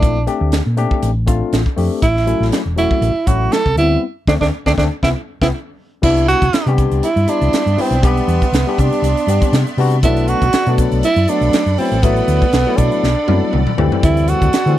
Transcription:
Already playing: A#1 A3 C4 D4 E4
0.03 kick, closed hi-hat
0.27 A3 C4 D4 G4, closed hi-hat
0.41 D2
0.52 snare, closed hi-hat
0.66 A#2
0.77 A3 C4 D4 G4, closed hi-hat
0.91 kick
1.03 A1, closed hi-hat
1.26 A3 C4 D4 F4, kick, closed hi-hat
1.53 A1, snare, closed hi-hat
1.66 kick
1.76 F2 A3 C4 D4 G4, open hi-hat
2.02 A1 E4, kick, closed hi-hat
2.17 snare
2.26 F#3 A3 C#4 E4, closed hi-hat
2.40 A1, snare
2.52 snare, closed hi-hat
2.66 E1
2.76 F#3 A3 C#4 E4 F#4, closed hi-hat
2.91 muted fingered electric bass stroke, kick
3.01 A1, closed hi-hat
3.27 A1 F#3 A3 C#4 E4 F#4, kick, closed hi-hat
3.52 A4, snare, closed hi-hat
3.66 C2, kick
3.76 D2 G3 B3 C4 E4, closed hi-hat
4.27 D2 A3 C4 D4, kick, snare
4.41 D2 A3 C4 D4, kick, snare
4.66 D2 A3 C4 D4, kick, snare
4.78 D2 A3 C4 D4, kick, snare
5.03 C2 B3 C4 E4, kick, snare
5.41 C2 B3 C4 E4, kick, snare
6.02 C2 G3 B3 D4 E4 D5 E5 C6, kick, crash
6.17 closed hi-hat
6.28 F#4, closed hi-hat
6.42 C2, kick, closed hi-hat
6.53 muted fingered electric bass stroke, snare, closed hi-hat
6.66 C3 G3 B3 D4 G4, closed hi-hat
6.78 kick, closed hi-hat
6.91 C2, closed hi-hat
7.03 E4, closed hi-hat
7.16 G2, closed hi-hat
7.28 G3 B3 D4 E4, closed hi-hat
7.41 C2, closed hi-hat
7.53 muted fingered electric bass stroke, snare, closed hi-hat
7.66 G2, closed hi-hat
7.77 G3 B3 C4 D4 E4, muted fingered electric bass stroke, open hi-hat
7.91 B1, closed hi-hat
8.03 G3 B3 D4 G4, kick, closed hi-hat
8.17 closed hi-hat
8.28 E2, closed hi-hat
8.42 kick, closed hi-hat
8.52 C2, snare, closed hi-hat
8.67 G3 B3 D4 G4
8.78 C3 D4, kick, closed hi-hat
8.93 closed hi-hat
9.02 C2, closed hi-hat
9.17 closed hi-hat
9.27 G2 G3 B3 D4 G4, closed hi-hat
9.42 kick, closed hi-hat
9.53 C3, snare, closed hi-hat
9.67 closed hi-hat
9.77 C3 G3 B3 D4 F#4, open hi-hat
9.91 closed hi-hat
10.03 B1 F#3 A3 B3 D4 E4 A4 F#5 B5, kick, closed hi-hat
10.17 closed hi-hat
10.28 F#4, closed hi-hat
10.42 B1, kick, closed hi-hat
10.53 snare, closed hi-hat
10.66 B2 F#3 A3 B3 D4, closed hi-hat
10.78 kick, closed hi-hat
10.92 B1, closed hi-hat
11.03 E4, closed hi-hat
11.16 F#2, closed hi-hat
11.28 F#3 A3 B3 D4, closed hi-hat
11.41 B1, closed hi-hat
11.53 snare, closed hi-hat
11.66 F#2, closed hi-hat
11.78 F#3 A3 B3 C4 E4, muted fingered electric bass stroke, open hi-hat
11.92 A1, closed hi-hat
12.03 F#3 A3 B3 E4, kick, closed hi-hat
12.16 closed hi-hat
12.28 D2, closed hi-hat
12.42 kick, closed hi-hat
12.53 B1, snare, closed hi-hat
12.66 F#3 A3 B3 E4
12.77 B2 D4, kick, closed hi-hat
12.92 closed hi-hat
13.03 B1, snare
13.27 F#2 F#3 A3 B3 E4, high tom
13.42 muted fingered electric bass stroke
13.53 C2, mid tom
13.67 mid tom
13.78 D2 E3 G3 A3 C4 A4 A5 C6, floor tom
13.92 floor tom
14.03 D2 E4, kick, closed hi-hat
14.17 closed hi-hat
14.28 F#4, closed hi-hat
14.42 D2, kick, closed hi-hat
14.53 snare, closed hi-hat
14.66 D3 E3 G3 A3 C4, closed hi-hat

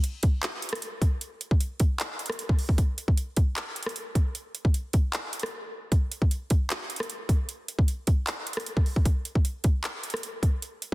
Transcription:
0.04 closed hi-hat
0.23 kick, closed hi-hat
0.43 clap, closed hi-hat
0.62 closed hi-hat
0.69 cross-stick, closed hi-hat
0.75 closed hi-hat
0.82 closed hi-hat
1.02 kick, closed hi-hat
1.21 closed hi-hat
1.41 closed hi-hat
1.51 kick
1.61 closed hi-hat
1.80 kick, closed hi-hat
2.00 clap, closed hi-hat
2.19 closed hi-hat
2.26 cross-stick, closed hi-hat
2.32 closed hi-hat
2.39 closed hi-hat
2.49 kick
2.59 open hi-hat
2.69 kick
2.78 kick, closed hi-hat
2.98 closed hi-hat
3.08 kick
3.17 closed hi-hat
3.37 kick, closed hi-hat
3.56 clap, closed hi-hat
3.76 closed hi-hat
3.83 cross-stick, closed hi-hat
3.89 closed hi-hat
3.96 closed hi-hat
4.15 kick, closed hi-hat
4.35 closed hi-hat
4.55 closed hi-hat
4.65 kick
4.74 closed hi-hat
4.93 kick, closed hi-hat
5.13 clap, closed hi-hat
5.33 closed hi-hat
5.39 cross-stick, closed hi-hat
5.46 closed hi-hat
5.92 kick, closed hi-hat
6.12 closed hi-hat
6.22 kick
6.31 closed hi-hat
6.50 kick, closed hi-hat
6.70 clap, closed hi-hat
6.90 closed hi-hat
6.96 cross-stick, closed hi-hat
7.03 closed hi-hat
7.10 closed hi-hat
7.29 kick, closed hi-hat
7.49 closed hi-hat
7.68 closed hi-hat
7.79 kick
7.88 closed hi-hat
8.07 kick, closed hi-hat
8.27 clap, closed hi-hat
8.47 closed hi-hat
8.53 cross-stick, closed hi-hat
8.60 closed hi-hat
8.66 closed hi-hat
8.77 kick
8.86 open hi-hat
8.96 kick
9.05 kick, closed hi-hat
9.25 closed hi-hat
9.35 kick
9.45 closed hi-hat
9.64 kick, closed hi-hat
9.84 clap, closed hi-hat
10.03 closed hi-hat
10.10 cross-stick, closed hi-hat
10.17 closed hi-hat
10.23 closed hi-hat
10.43 kick, closed hi-hat
10.62 closed hi-hat
10.82 closed hi-hat

